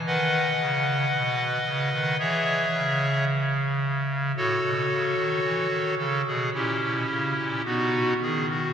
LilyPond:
<<
  \new Staff \with { instrumentName = "Pipe organ" } { \time 4/4 \key b \mixolydian \tempo 4 = 56 <b' dis'' fis''>2 <gis' cis'' e''>4 r4 | <fis' a' cis''>4. a'16 gis'16 <cis' e' g'>4 <b dis' fis'>8 gis'16 fis'16 | }
  \new Staff \with { instrumentName = "Pipe organ" } { \clef bass \time 4/4 \key b \mixolydian dis8 cis8 b,8 cis16 dis16 e8 cis4. | a,16 b,16 cis16 dis16 e16 dis16 cis16 b,16 ais,16 b,16 cis16 ais,16 b,8 dis8 | }
>>